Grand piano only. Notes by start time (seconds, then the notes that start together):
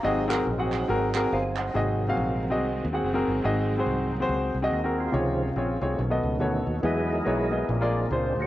Already playing: F5 A#5
0.03 G#2 C4 F#4 G#4 D#5
0.28 C4 F#4 G#4 A#4
0.58 C4 F#4 G#4 F#5
0.88 C4 F#4 G#4 A#4
1.15 C4 F#4 G#4 A#4
1.33 C5 F5
1.58 C5 F#5
1.74 G#2 C4 F#4 G#4 D#5
2.09 C4 F#4 G#4 F5
2.50 C4 F#4 G#4 D#5
2.93 C4 F#4 G#4 F#5
3.14 C4 F#4 G#4 A#4
3.44 G#2 C4 F#4 G#4 D#5
3.77 C4 F#4 G#4 C5
4.20 C4 F#4 G#4 C5
4.62 C4 F#4 G#4 D#5
4.84 C4 F#4 G#4 A#4
5.12 C3 C#3 F4 G#4 C#5
5.56 C4 F4 G#4 C#5
5.81 C4 F4 G#4 C#5
5.98 B2
6.10 B3 F#4 A4 D#5
6.40 B3 F#4 A4 C#5
6.83 E3 B3 E4 G#4 D#5
7.25 B3 E4 G#4 C#5
7.51 B3 E4 G#4 D#5
7.69 A#2
7.81 A#3 F4 G#4 D5
8.11 A#3 F4 G#4 C5